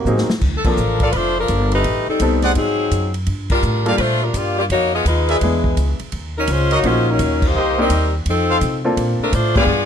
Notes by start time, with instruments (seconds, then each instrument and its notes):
Already playing: trombone section C3 D#3 F#3 A#3
0.05 upright bass A2, grand piano F#3 A#3 C4 D#4 G#4, hi-hat pedal
0.18 snare
0.29 muted upright bass stroke, snare
0.41 upright bass D2, kick, crash
0.57 saxophone section A4
0.64 grand piano F3 A#3 C4 D4 A4, saxophone section D4, muted upright bass stroke, kick, crash
0.68 saxophone section F3 A4 A#4
0.77 upright bass A1, hi-hat pedal
1.00 saxophone section A#3 F4 A4 D5, trumpet section A4 A#4 D5 F5, kick, ride
1.12 upright bass F1, saxophone section D4 F4 B4 C5, kick, ride
1.17 saxophone section A3
1.40 saxophone section F3 D4 A4 A#4
1.48 upright bass G1, kick, hi-hat pedal, ride
1.72 saxophone section A3 D#4 G4 B4, ride
1.84 upright bass A1, kick, ride
2.07 saxophone section G3 C4 D#4 A4, muted upright bass stroke
2.20 upright bass C2, grand piano G3 B3 C4 D#4 A4, kick, hi-hat pedal, ride
2.42 trumpet section G#4 C5 D5 F#5, snare, ride
2.55 upright bass G#2, saxophone section F#3 C4 D#4 G#4, kick, ride
2.91 upright bass F#2, kick, hi-hat pedal, ride
3.14 ride
3.26 upright bass G2, kick, ride
3.50 saxophone section G3 D4 F4 A#4, kick, crash
3.63 upright bass A2, hi-hat pedal
3.85 grand piano G3 A#3 D4 F4 A4, saxophone section A#3 F4 G4 D5, trumpet section G4 A#4 D5 F5, ride
3.97 upright bass A#2, saxophone section A3 D4 F4 B4 C5, kick, ride
4.24 saxophone section G3 D4 F4 A#4
4.33 upright bass G2, saxophone section A#3 D5, kick, hi-hat pedal, ride
4.38 saxophone section F4 G4
4.58 saxophone section A#3 F4 G4 D5
4.70 upright bass F2, saxophone section A#3 D#4 F#4 C#5, kick, ride
4.95 saxophone section B3 F4 G#4 D#5
5.05 upright bass D#2, saxophone section G#3 D#4 F4 B4, kick, hi-hat pedal, ride
5.28 trumpet section G#4 A#4 D5 E5, ride
5.41 upright bass E2, grand piano G#3 B3 D4 E4 G#4, kick, ride
5.64 kick
5.76 upright bass C#2, kick, hi-hat pedal, ride
5.99 muted upright bass stroke, ride
6.12 upright bass D#2, kick, ride
6.37 saxophone section F#3 C#4 D#4 A#4
6.47 upright bass C#2, saxophone section C5, kick, hi-hat pedal, ride
6.52 saxophone section G#3 C#4 F4
6.71 saxophone section A#3 D#4 F#4, trumpet section F#4 A#4 C#5 D#5, ride
6.75 saxophone section C#5
6.83 upright bass A#1, saxophone section G#3 C#4 F4 C5, grand piano A#3 C#4 D#4 F4 F#4, kick, ride
7.10 saxophone section F#3 C#4 D#4 A#4
7.19 upright bass D#2, kick, hi-hat pedal, ride
7.42 kick, crash
7.47 saxophone section A#3 D#4 G4 C5
7.55 upright bass C2, trumpet section G4 A#4 C5 D#5
7.78 saxophone section G3 C4 D#4 A#4, grand piano A#3 C4 D4 D#4 G4
7.90 upright bass D#2, kick, hi-hat pedal, ride
8.26 upright bass F2, kick, ride
8.30 saxophone section F3 C4 D#4 A4
8.50 trumpet section F4 A4 C5 F5
8.61 upright bass C3, kick, hi-hat pedal, ride
8.85 grand piano A#3 C4 D4 F4 A4
8.97 upright bass A#2, kick, ride
9.19 muted upright bass stroke
9.24 saxophone section F3 A3 D4 A#4
9.33 upright bass A2, saxophone section A3 D4 F4 C5, kick, hi-hat pedal, ride
9.56 grand piano G#3 B3 D4 F4 G4, saxophone section B3 F4 G#4 D5, trumpet section G4 G#4 B4 F5, kick, crash
9.67 upright bass G2